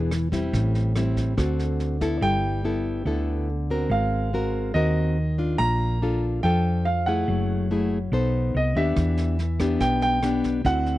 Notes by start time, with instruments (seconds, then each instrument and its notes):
Already playing: fingered electric bass E1, nylon-string guitar E3 B3 D4 G#4
0.11 cross-stick, snare
0.32 nylon-string guitar G3 C4 E4, kick, snare
0.53 fingered electric bass A1, nylon-string guitar A2, kick, snare
0.75 snare
0.96 nylon-string guitar G3 C4 E4, cross-stick, snare
1.17 kick, snare
1.37 fingered electric bass D2, nylon-string guitar D3 C4 F#4 A4, kick, cross-stick, snare
1.59 snare
1.80 snare
2.01 nylon-string guitar B3 E4 A4, kick, snare
2.21 fingered electric bass G1, nylon-string guitar G3, grand piano G5
2.65 nylon-string guitar B3 E4 A4
3.05 fingered electric bass D2, nylon-string guitar D3 B3 E4 A4
3.70 nylon-string guitar C4 F#4 A#4
3.90 fingered electric bass G#1, nylon-string guitar G#3, grand piano F5
4.33 nylon-string guitar C4 F#4 A#4
4.74 fingered electric bass D#2, nylon-string guitar D#3 C4 F#4 A#4, grand piano D#5
5.38 nylon-string guitar D4 F4
5.58 fingered electric bass A#1, nylon-string guitar A#3, grand piano A#5
6.02 nylon-string guitar D4 F4 A4
6.43 fingered electric bass F2, nylon-string guitar F3 D4 F4 A4, grand piano G5
6.85 grand piano F5
7.06 nylon-string guitar A3 E4 G#4, grand piano F#5
7.28 fingered electric bass F#1, nylon-string guitar F#3
7.71 nylon-string guitar A3 E4 G#4
8.12 fingered electric bass B1, nylon-string guitar B3 D#4 A4 C5
8.54 fingered electric bass C2, grand piano D#5
8.75 fingered electric bass D#2, nylon-string guitar B3 D4 G4, grand piano E5
8.96 fingered electric bass E2, nylon-string guitar E3, kick, cross-stick, snare
9.17 snare
9.39 snare
9.60 nylon-string guitar B3 D4 G4, kick, cross-stick, snare
9.80 fingered electric bass B1, nylon-string guitar B2, grand piano G5, kick, snare
10.02 grand piano G5, snare
10.23 nylon-string guitar B3 D4 G4, cross-stick, snare
10.44 kick, snare
10.64 fingered electric bass D2, nylon-string guitar D3 C4 E4 F#4, grand piano F#5, kick, snare
10.86 snare